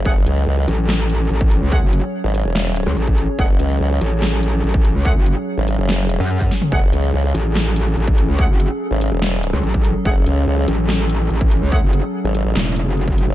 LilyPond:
<<
  \new Staff \with { instrumentName = "Ambient pad" } { \time 4/4 \key fis \minor \tempo 4 = 144 << { cis''1~ | cis''1~ | cis''1~ | cis''1 |
a'1~ | a'1~ | a'1~ | a'1 | } \\ { <fis cis' gis'>1~ | <fis cis' gis'>1~ | <fis cis' gis'>1~ | <fis cis' gis'>1~ |
<fis cis' gis'>1~ | <fis cis' gis'>1~ | <fis cis' gis'>1~ | <fis cis' gis'>1 | } >> }
  \new Staff \with { instrumentName = "Brass ensemble" } { \time 4/4 \key fis \minor <a gis' fis''>8 r2. r8 | <a gis' fis''>8 r2. r8 | <a gis' fis''>8 r2. r8 | <a gis' fis''>8 r2. r8 |
<a gis' fis''>8 r2. r8 | <a gis' fis''>8 r2. r8 | <a gis' fis''>8 r2. r8 | <a gis' fis''>8 r2. r8 | }
  \new Staff \with { instrumentName = "Wobble bass" } { \clef bass \time 4/4 \key fis \minor r4. a,,4. a,,8. cis,16~ | cis,16 fis,,8 r2 cis,16 a,,8. r16 | r4. a,,4. a,,8. cis,16~ | cis,16 fis,,8 r2 fis,8. r8 |
r4. a,,4. a,,8. cis,16~ | cis,16 fis,,8 r2 cis,16 a,,8. r16 | r4. a,,4. a,,8. cis,16~ | cis,16 fis,,8 r4 r16 e,,8. fis,,4 r16 | }
  \new Staff \with { instrumentName = "Wobble bass" } { \clef bass \time 4/4 \key fis \minor fis,,8 cis,8 cis,8 r2 r8 | r4 r16 gis,,8 e,,4 r4 r16 | fis,,8 cis,8 cis,8 r2 r8 | r4 r16 gis,,8 fis,,4 r4 r16 |
fis,,8 cis,8 cis,8 r2 r8 | r4 r16 gis,,8 e,,4 r4 r16 | fis,,8 cis,8 cis,8 r2 r8 | r4 r16 gis,,8 a,,16 r4. r16 fis,,16 | }
  \new DrumStaff \with { instrumentName = "Drums" } \drummode { \time 4/4 bd8 hh8 r8 hh8 sn8 hh8 hh16 bd16 hh8 | bd8 hh8 r8 hh8 sn8 hh8 hh16 bd16 hh8 | bd8 hh8 r8 hh8 sn8 hh8 hh16 bd16 hh8 | bd8 hh8 r8 hh8 sn8 hh8 hh16 bd16 <hh sn>16 toml16 |
bd8 hh8 r8 hh8 sn8 hh8 hh16 bd16 hh8 | bd8 hh8 r8 hh8 sn8 hh8 hh16 bd16 hh8 | bd8 hh8 r8 hh8 sn8 hh8 hh16 bd16 hh8 | bd8 hh8 r8 hh8 sn8 hh8 hh16 bd16 hh8 | }
>>